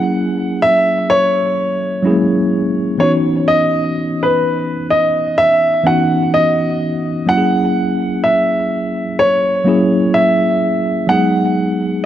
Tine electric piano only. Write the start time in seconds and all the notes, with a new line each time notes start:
Already playing: F#3 A#3 C#4 E4 G#4
2.02 F#3 G#3 C#4 E4
2.07 A#3 G#4
2.98 E3 B3 C#4 D#4
3.02 F#4
5.83 E3 B3 C#4 D#4
5.88 F#4
7.26 F#3 A#3 C#4 E4
7.31 F#4
7.37 G#4
9.64 F#3 A#3 C#4 E4
9.69 G#4
11.07 F#3 G#3 B3 D#4
11.12 G#4